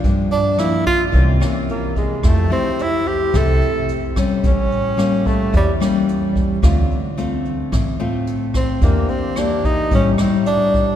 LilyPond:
<<
  \new Staff \with { instrumentName = "Tenor saxophone" } { \time 4/4 \key d \minor \tempo 4 = 109 r8 d'8 e'8 f'8 r4 bes8 gis8 | a8 c'8 e'8 g'8 a'4 r4 | cis'4. a8 g8 r4. | r2. r8 c'8 |
bes8 c'8 d'8 ees'8 cis'8 r8 d'4 | }
  \new Staff \with { instrumentName = "Nylon-string guitar" } { \time 4/4 \key d \minor << { <f bes d'>4 <f bes d'>4 <e bes des'>8 <e bes des'>4. | <a e' g'>8 <a e' g'>4. <a e' g'>4. <g cis'>8~ | <g cis'>4 <g bes cis'>4 r8 <g bes cis'>4. | <a c' f'>8 r8 <a c' f'>4. <a c' f'>4. |
<bes d' g'>4 <bes d' g'>4 <g cis' e'>8 <g e'>4. | } \\ { g,2 c2 | f2 c2 | a,2 e2 | d2 a,2 |
e2 a,2 | } >> }
  \new Staff \with { instrumentName = "Upright bass" } { \clef bass \time 4/4 \key d \minor g,8 r4. c,8 r4. | f,8 r4. c,8 r4. | a,,8 r4. e,8 r4. | d,8 r4. a,,8 r4. |
e,8 r4. a,,8 r4. | }
  \new DrumStaff \with { instrumentName = "Drums" } \drummode { \time 4/4 <hh bd>8 hh8 <hh ss>8 <hh bd>8 <hh bd>8 <hh ss>8 hh8 <hh bd>8 | <hh bd ss>8 hh8 hh8 hh8 <hh bd ss>8 hh8 hh8 <hh bd ss>8 | <hh bd>8 hh8 <hh ss>8 <hh bd>8 <hh bd>8 <hh ss>8 hh8 <hh bd>8 | <hh bd ss>8 hh8 hh8 hh8 <hh bd ss>8 hh8 hh8 <hh bd ss>8 |
<hh bd>8 hh8 <hh ss>8 <hh bd>8 <hh bd>8 <hh ss>8 hh8 <hh bd>8 | }
>>